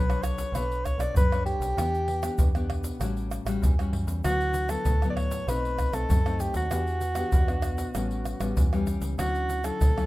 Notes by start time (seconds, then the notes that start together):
Already playing: B1 F#3 B4
0.09 D4 A4 C#5, pandeiro, tamborim, shaker
0.23 C#5, pandeiro, tamborim, shaker
0.38 pandeiro, shaker
0.52 B1 B3 D4 A4 B4 C#5, pandeiro, tamborim, shaker, surdo
0.72 pandeiro, shaker
0.85 C#5, pandeiro, tamborim, shaker, surdo
0.98 B1 D4 A4 C#5 D5, pandeiro, tamborim, shaker
1.14 F#2 F#3 B4, pandeiro, shaker, surdo
1.32 D4 A4 C#5, pandeiro, tamborim, shaker
1.46 G4, pandeiro
1.60 B1, pandeiro, shaker
1.77 E2 E3 B3 D4 G4, pandeiro, tamborim, shaker, surdo
1.94 pandeiro, shaker
2.08 pandeiro
2.23 B3 D4 G4, pandeiro, tamborim, shaker
2.38 E2 B2, pandeiro, shaker, surdo
2.55 B3 D4 G4, pandeiro, tamborim, shaker
2.70 pandeiro, tamborim
2.84 pandeiro, shaker
3.00 A1 A2 G3 C#4 F#4, pandeiro, tamborim, shaker, surdo
3.17 pandeiro, shaker
3.31 pandeiro, tamborim, shaker
3.45 A1 G3 C#4 F#4, pandeiro, tamborim, shaker
3.62 E2 E3, pandeiro, shaker, surdo
3.79 G3 C#4 F#4, pandeiro, tamborim, shaker
3.93 F#2, pandeiro
4.07 E2, pandeiro, shaker
4.24 D2 D3 F#3 B3 E4 F#4, pandeiro, tamborim, shaker, surdo
4.41 pandeiro, shaker
4.54 pandeiro, shaker
4.69 F#3 B3 E4 A4, pandeiro, tamborim, shaker
4.85 D2 A2, pandeiro, shaker, surdo
5.02 F#3 B3 E4, pandeiro, tamborim, shaker
5.10 D5
5.15 C#5, pandeiro, tamborim
5.31 pandeiro, shaker
5.47 B1 B2 A3 C4 D#4 B4, pandeiro, tamborim, shaker, surdo
5.65 pandeiro, shaker
5.78 pandeiro, tamborim, shaker, surdo
5.92 B1 A3 C4 D#4 A4, pandeiro, tamborim, shaker
6.09 F#2 F#3, pandeiro, shaker, surdo
6.25 A3 C4 D#4, pandeiro, tamborim, shaker
6.40 G4, pandeiro, shaker
6.54 D#2 F#4, pandeiro, shaker
6.70 E2 E3 B3 D4 G4, pandeiro, tamborim, shaker, surdo
6.87 pandeiro, shaker
7.01 pandeiro, shaker
7.15 B3 D4 G4, pandeiro, tamborim, shaker
7.32 E2 B2, pandeiro, shaker, surdo
7.48 B3 D4, pandeiro, tamborim, shaker
7.62 pandeiro, tamborim, shaker
7.78 pandeiro, shaker
7.95 A1 A2 G3 B3 C#4, pandeiro, tamborim, shaker, surdo
8.11 pandeiro, shaker
8.25 pandeiro, tamborim, shaker
8.40 A1 G3 B3 C#4, pandeiro, tamborim, shaker
8.57 E2 E3, pandeiro, shaker, surdo
8.73 G3 B3 C#4, pandeiro, tamborim, shaker
8.87 pandeiro, shaker
9.01 C#2, pandeiro, shaker
9.18 D2 D3 F#3 C#4 E4 F#4, pandeiro, tamborim, shaker, surdo
9.35 pandeiro, shaker
9.50 pandeiro, shaker
9.63 F#3 C#4 E4 A4, pandeiro, tamborim, shaker
9.81 D2 A2, pandeiro, shaker, surdo
9.97 F#3 C#4 E4, pandeiro, tamborim, shaker